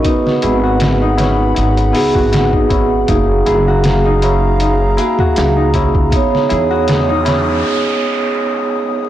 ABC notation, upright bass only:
X:1
M:4/4
L:1/16
Q:"Swing 16ths" 1/4=79
K:Gb
V:1 name="Upright bass" clef=bass
z2 A,,,6 A,,,2 D,, A,,,4- A,,, | G,,,2 G,,,8 z2 D,,3 D,, | z2 =E,,6 z8 |]